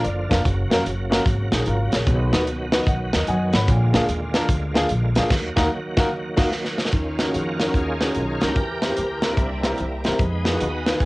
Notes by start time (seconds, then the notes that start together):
Already playing: D3 F3 A#3 F4
0.04 F#1 D5, closed hi-hat
0.29 F1 A#3 D4 F4 A#4, kick, snare, closed hi-hat
0.45 F#1 C#3 F#3 F#4, kick, closed hi-hat
0.70 F1 A#3 C#4 F#4 A#4, snare, closed hi-hat
0.86 F#1, closed hi-hat
1.10 A#3 C#4 F#4 A#4, snare, closed hi-hat
1.26 G#1, kick, closed hi-hat
1.52 A#1 D#4 G#4, snare, closed hi-hat
1.65 G#1 F4 A#4, closed hi-hat
1.92 A#1 G#4 C#5, snare, closed hi-hat
2.07 B1 B2 D#3 B3 F#4, kick, closed hi-hat
2.32 D#2 B3 D#4 F#4 B4, snare, closed hi-hat
2.47 C#2, closed hi-hat
2.72 B3 D#4 F#4 B4 D#5, snare, closed hi-hat
2.87 B1 F#5, kick, closed hi-hat
3.13 D#2 A#4 D#5, snare, closed hi-hat
3.27 F#2 D#5 F#5 G#5, closed hi-hat
3.53 G#1 C#5 F#5 B5, snare, closed hi-hat
3.68 A#1 A#2 D3 G#3 A#3 F4, kick, closed hi-hat
3.93 D2 A#3 D4 F4 G#4, snare, closed hi-hat
4.09 D#2, closed hi-hat
4.34 A#3 D4 F4 A#4, snare, closed hi-hat
4.49 D2, kick, closed hi-hat
4.74 A#3 D4 F4 G#4, snare, closed hi-hat
4.89 A#1, closed hi-hat
5.15 D2 A#3 D4 F4 G#4, snare, closed hi-hat
5.30 D#2 D#3 F#3 F#4, kick, snare, crash
5.56 D#2 A#3 D#4 F#4 A#4, kick, snare
5.97 D#2 A#3 D#4 F#4 A#4, kick, snare
6.37 D#2 A#3 D#4 F#4, kick, snare, crash
6.52 snare
6.65 snare
6.78 snare
6.85 snare
6.92 D#2 D#3 C#4 F4 C#5 D#5 A#5, kick, closed hi-hat
7.19 A#3 C#4 D#4 F#4 A#4, snare, closed hi-hat
7.27 C#4 D#4 F#4 G#4
7.34 F2, closed hi-hat
7.59 C#4 D#4 F#4 A#4, snare, closed hi-hat
7.67 C#4 D#4 F#4 A#4
7.74 D#2 C#4 G#4, kick, closed hi-hat
8.01 C#4 D#4 F#4 G#4, snare, closed hi-hat
8.07 C#4 D#4 F#4 A#4
8.14 B1, closed hi-hat
8.41 C#2 C#4 D#4 F#4 G4 A#4, snare, closed hi-hat
8.48 C#4 D#4 F#4 A#4
8.55 E2 E3 C5 E5 G5, kick, closed hi-hat
8.82 C4 E4 G4 A#4, snare, closed hi-hat
8.90 C4 E4 G4 A#4
8.96 D2, closed hi-hat
9.22 A#3 C4 D4 E4 F#4 G4 A#4, snare, closed hi-hat
9.31 C4 E4 G4 A#4
9.37 C2 G3 A#3 E4, kick, closed hi-hat
9.63 C4 E4 G4 A#4, snare, closed hi-hat
9.70 C4 E4 G4 A#4
9.78 C2, closed hi-hat
10.04 D2 C4 E4 G4 A#4, snare, closed hi-hat
10.11 C4 E4 G4 A#4
10.18 F2 G#3 B3 D#4 D#5 F5 G#5 B5, kick, closed hi-hat
10.44 B3 D#4 F4 F#4 G#4, snare, closed hi-hat
10.52 B3 D#4 F4 G#4
10.60 D#2, closed hi-hat
10.85 B3 D#4 F4 B4, snare, closed hi-hat
10.92 B3 D#4 F4
11.00 A#1 A#2 G#3 G#4 D5 A#5, kick, closed hi-hat